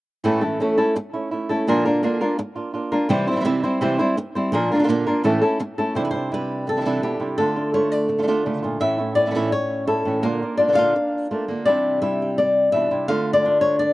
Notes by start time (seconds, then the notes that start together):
0.24 A2 E3 A3 C#4 E4 A4
0.41 A3 C#4 E4 A4
0.60 E3 A3 C#4 E4 A4
0.78 A3 C#4 E4 A4
0.95 muted nylon-string guitar stroke
1.13 A3 C#4 E4
1.31 A3 C#4 E4
1.49 A3 C#4 E4 A4
1.67 A#2 D3 F3 A#3 D4 F4 A#4
1.85 A#3 D4 F4 A#4
2.03 D3 A#3 D4 F4 A#4
2.20 A#3 D4 F4 A#4
2.38 muted nylon-string guitar stroke
2.56 A#3 D4 F4
2.74 A#3 D4 F4
2.92 A#3 D4 F4 A#4
3.09 C3 E3 G3 C4 E4 C5, muted nylon-string guitar stroke
3.27 G3 C4 E4 C5
3.31 E3 G3 C4 E4
3.36 E3 G3 C4 E4
3.40 E3 G3 C4 E4
3.45 C3 E3 G3 C4 E4, muted nylon-string guitar stroke
3.63 G3 C4 E4 C5
3.81 C3 E3 G3 C4 E4 C5
3.98 G3 C4 E4 C5
4.17 muted nylon-string guitar stroke
4.35 G3 C4 E4 C5
4.52 A#2 F3 A#3 D4 F4 A#4, muted nylon-string guitar stroke
4.72 D3 A#3 D4 F4 A#4
4.76 D3 A#3 D4 F4
4.80 D3 A#3 F4
4.84 A#2 D4 F4
4.89 D3 A#3 D4 F4, muted nylon-string guitar stroke
5.07 A#3 D4 F4 A#4
5.24 A2 E3 A3 C#4 E4 A4
5.42 A3 C#4 E4 A4
5.61 muted nylon-string guitar stroke
5.78 A3 C#4 E4 A4
5.95 C3 E3 G3 D4 E4 C5
6.05 B4
6.11 D4 E4 C5
6.16 G3
6.32 G3 D4 E4 B4
6.67 A4, muted nylon-string guitar stroke
6.76 E3 G3 D4 E4
6.81 E3 G3 D4 E4
6.85 C3 E3 G3 D4 E4
7.02 B2 E3 G3 D4 E4 G4
7.20 C3 G3 D4 E4
7.38 D3 A3 D4 F4 A4
7.56 A3 D4 F4
7.74 A3 D4 F4 C#5
7.92 D5
8.09 muted nylon-string guitar stroke
8.18 D3 A3 D4 F4
8.22 D3 A3 D4 F4
8.27 D3 A3 D4 F4
8.45 C#3 D3 A3 D4 F4
8.63 A#2 A3 D4 F4
8.80 A2 E3 A3 C#4 E4 E5
8.98 A3 C#4 E4
9.15 A3 C#4 E4 D5
9.26 E3 A3 C#4 E4
9.31 E3 A3 C#4 E4
9.35 A2 E3 A3 C#4 E4
9.52 C#5, muted nylon-string guitar stroke
9.87 A3 C#4 E4 A4
10.05 A2 E3 A3 C#4 E4
10.23 A#2 D3 A#3 D4 F4 A#4
10.42 A#3 D4 F4
10.57 A#3 D4 F4 D5
10.68 D3 A#3 D4 F4
10.73 D3 A#3 D4 F4 F5
10.77 A#2 D3 A#3 D4 F4
10.95 muted nylon-string guitar stroke
11.31 A3 A#3 D4 F4
11.48 D3 A#3 D4 F4
11.65 C3 E3 G3 D4 E4 D5
12.02 G3 D4 E4 E5
12.22 G4
12.38 D5, muted nylon-string guitar stroke
12.72 B2 E3 G3 D4 E4 E5
12.91 C3 G3 D4 E4
13.08 D3 A3 D4 F4 F5
13.33 D5
13.45 A3 D4 F4
13.61 C#5
13.79 D5, muted nylon-string guitar stroke